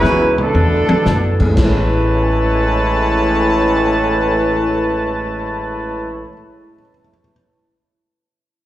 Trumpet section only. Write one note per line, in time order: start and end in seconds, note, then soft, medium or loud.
0.00 0.36 F#3 medium
0.00 0.36 C#4 medium
0.00 0.36 E4 loud
0.00 0.36 B4 loud
0.41 1.42 B3 medium
0.41 1.42 D4 medium
0.41 1.43 A4 loud
1.58 6.24 E4 medium
1.58 6.25 B4 medium
1.58 6.25 C#5 medium
1.58 6.24 A5 loud